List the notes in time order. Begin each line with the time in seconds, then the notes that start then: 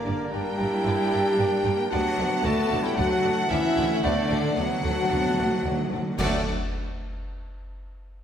Already playing: G2 D3 A#3 D4 A#4 D5
0.05 G2 A#3 A#4 D5
0.31 G2 G3 D4 G4 A#4 D5 G5
0.59 G2 E4 A#4 D5
0.85 G2 A#4 D5
1.12 G2 A#4 D5
1.38 G2 D4 A#4 D5
1.64 G2 A#3 A#4 D5
1.90 D2 A2 D3 F#3 A3 B3 D4 F#4 D5 F#5
1.99 D3
2.06 D3
2.14 D3
2.18 D2 D3 D5 F#5
2.28 D3
2.36 D3
2.42 D2 D3 A3 F#4 A4 D5 F#5 A5
2.58 D3
2.71 D2 D3 D5 F#5
2.81 D3 G3 E4 G5
2.87 D3 G4
2.96 D2 D3 F#3 A3 D4 F#4 D5 F#5
3.10 D3
3.19 D3
3.23 D2 D3 A3 D5 F#5
3.33 D3
3.39 D3
3.46 D3 C#4 E5
3.50 D2 D3 E3 B3 E4 D5 E5 F#5
3.62 D3
3.70 D3
3.77 D2 D3 A3 D5 F#5
3.85 D3
3.92 D3
3.98 D3
4.02 D2 D3 A3 B3 D4 D5 F#5
4.07 D3
4.14 D3
4.21 D3
4.28 D2 D3 A3 D5 F#5
4.36 D3
4.44 D3
4.51 D3
4.56 D2 D3 F#3 B3 D4 F#4 D5 F#5
4.65 D3
4.73 D3
4.80 D2 D3 A3 D5 F#5
4.88 D3
4.96 D3
5.04 D3
5.09 D2 D3 B3 D5 F#5
5.19 D3
5.26 D3
5.34 D2 D3 D5 F#5
5.38 D3 A3
5.49 D3
5.57 D3
5.64 D2 D3 F#3 D5 F#5
5.71 D3
5.80 D3
5.87 D3
5.92 D2 D3 D5 F#5
6.02 D3
6.11 D3
6.18 D2 A2 D3 F#3 A3 D4 F#4 A4 D5 F#5, concert bass drum, crash